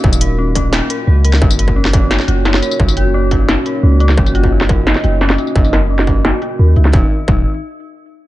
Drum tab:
HH |-xx---x---x---x-|-xx---x---x---x-|-xx---x---x---x-|-xx---x---x---x-|
TB |-x--------------|-x------------xx|-x--------------|-x------------xx|
SD |--------o------o|-----o--oo--oo--|--------o------o|-----o--oo--oo--|
BD |o-----o---------|o--o--o---------|o-----o---------|o--o--o---------|

HH |-xx---x---x---x-|----------------|
TB |-xx-------------|----------------|
SD |--o--o--o------o|----------------|
BD |o-----o---------|o---o-----------|